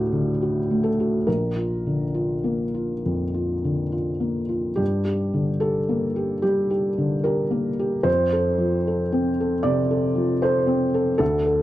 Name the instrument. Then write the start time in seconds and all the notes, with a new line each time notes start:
felt piano
Already playing: A2 D3 A3 F#4 G4
0.12 D3
0.42 F#4
0.71 A3
0.83 A4
1.00 F#4
1.27 A#1 A#4
1.56 F4
1.87 D3
2.14 F4
2.44 A#3
2.74 F4
3.06 F2
3.34 F4
3.64 D3
3.92 F4
4.20 A#3
4.49 F4
4.76 G2 G4
5.05 G4
5.34 D3
5.60 G4 A4
5.89 A#3
6.16 G4
6.42 G3 G4
6.70 G4
6.98 D3
7.24 G4 A#4
7.51 A#3
7.79 G4
8.03 F2 C5
8.33 A4
8.58 F3
8.87 A4
9.12 C4
9.40 A4
9.63 C3 D5
9.91 A4
10.15 F3
10.42 A4 C5
10.67 C4
10.94 A4
11.18 D2 A4
11.46 A4